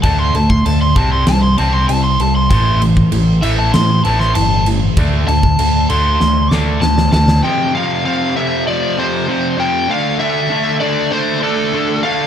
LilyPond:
<<
  \new Staff \with { instrumentName = "Lead electric guitar" } { \time 4/4 \key d \dorian \tempo 4 = 98 << { a''16 c'''16 a''16 c'''16 a''16 c'''16 a''16 c'''16 a''16 c'''16 a''16 c'''16 a''16 c'''16 a''16 c'''16 | c'''8 r4 e''16 a''16 c'''8 a''16 c'''16 a''8 r8 | r8 a''4 c'''4 d'''8 a''4 | r1 |
r1 | } \\ { r1 | r1 | r2. r8 a''8 | g''8 f''8 f''8 e''8 d''8 c''4 g''8 |
f''8 e''4 d''8 c''8 a'4 f''8 | } >> }
  \new Staff \with { instrumentName = "Distorted electric guitar" } { \clef bass \time 4/4 \key d \dorian <d a d'>8 <d a>8 <d a>8 <c g c'>8 <c g>8 <c g c'>8 <c g>8 <c g>8 | <a, e a>8 <a, e>8 <a, e>8 <a, e a>8 <a, e>8 <a, e a>8 <a, e>8 <a, e>8 | <d a d'>8 <d a>8 <d a>8 <d a d'>8 <d a>8 <d a d'>8 <d a>8 <d a>8 | <f, c f>8 <f, c f>8 <f, c f>8 <f, c f>8 <f, c f>8 <f, c f>8 <f, c f>8 <f, c f>8 |
<d a d'>8 <d a d'>8 <d a d'>8 <d a d'>8 <d a d'>8 <d a d'>8 <d a d'>8 <d a d'>8 | }
  \new Staff \with { instrumentName = "Picked electric bass" } { \clef bass \time 4/4 \key d \dorian d,8 d,8 d,8 c,8 c,8 c,8 c,8 c,8 | a,,4 a,,8 a,,8 a,8 a,,8 g,,4 | d,8 d,8 d,8 d,8 d,8 d,8 d,8 d,8 | r1 |
r1 | }
  \new DrumStaff \with { instrumentName = "Drums" } \drummode { \time 4/4 <cymc bd>8 cymc16 bd16 cymc8 <cymc bd>8 <cymc sn>8 cymc8 cymc8 cymc8 | <cymc bd>8 cymc16 bd16 cymc8 cymc8 <cymc sn>8 cymc16 sn16 cymc8 cymc8 | <cymc bd>8 cymc16 bd16 cymc8 cymc8 sn8 sn8 sn16 sn16 sn16 sn16 | r4 r4 r4 r4 |
r4 r4 r4 r4 | }
>>